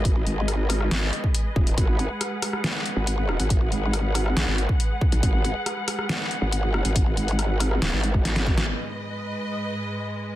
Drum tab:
CC |----------------|----------------|----------------|----------------|
HH |x-x-x-o-x-x-x--x|x-x-x-o-x-x-x--x|x-x-x-o-x-x-x--x|x-x-x-o-x-x-x--x|
SD |----r-rro-------|----r-rro-----r-|----r-rro-------|----r-rro-----r-|
BD |o----------o--o-|o---------------|o----------o--o-|o---------------|

CC |----------------|x---------------|
HH |x-xxx-o-x-x-xx-x|----------------|
SD |----r-rro---oo-o|----------------|
BD |o----------o--o-|----------------|